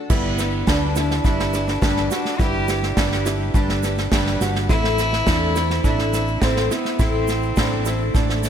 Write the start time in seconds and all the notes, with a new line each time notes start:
Already playing: F#4
0.10 G1 G3 B3 D4 E4 G4 B4, kick, snare, crash, shaker
0.38 D4 G4 B4, snare, shaker
0.67 D2 G3 D4 G4 B4, kick, snare, shaker
0.95 D4 E4 G4 B4, snare, shaker
1.11 snare
1.24 G1 G3 D4 E4 G4 B4, kick, snare, shaker
1.39 snare
1.53 D4 G4 B4, snare, shaker
1.68 D4, snare, shaker
1.81 G1 G3 D4 G4 B4, kick, snare, shaker
1.96 snare
2.10 D4 F#4 G4 B4, snare, shaker
2.25 snare
2.38 G1 G3 D4 E4 G4 B4, kick, snare, shaker
2.68 D4 G4 B4, snare, shaker
2.83 snare
2.97 G1 G3 D4 G4 B4, kick, snare, shaker
3.12 snare
3.25 D4 E4 G4 B4, snare, shaker
3.54 G1 G3 D4 G4 B4, kick, snare, shaker
3.69 snare
3.83 D4 G4 B4, snare, shaker
3.98 snare, shaker
4.12 G1 G3 D4 G4 B4, kick, snare, shaker
4.26 snare
4.41 G1 D4 F#4 G4 B4, snare, shaker
4.55 snare
4.69 A1 A2 E3 A3 C4 E4 A4, kick, snare, shaker
4.84 snare
4.98 A3 C4 E4 A4, snare, shaker
5.13 snare
5.27 E2 A2 E3 A3 C4 D4 E4 A4, kick, snare, shaker
5.56 A3 C4 E4 A4, snare, shaker
5.70 snare
5.84 A1 A3 C4 D4 E4 A4, kick, snare, shaker
5.98 snare
6.13 A3 C4 E4 A4, snare, shaker
6.28 shaker
6.42 A1 A2 E3 A3 C4 E4 A4, kick, snare, shaker
6.56 snare
6.71 A3 B3 C4 E4 A4, snare, shaker
6.85 snare
6.99 A1 A2 E3 A3 C4 E4 A4, kick, snare, shaker
7.28 A3 C4 E4 A4, snare, shaker
7.43 shaker
7.56 A1 A2 E3 A3 C4 D4 E4 A4, kick, snare, shaker
7.85 A3 C4 E4 A4, snare, shaker
8.14 A1 A3 C4 D4 E4 A4, kick, snare, shaker
8.29 snare
8.43 A3 C4 E4 A4, snare, shaker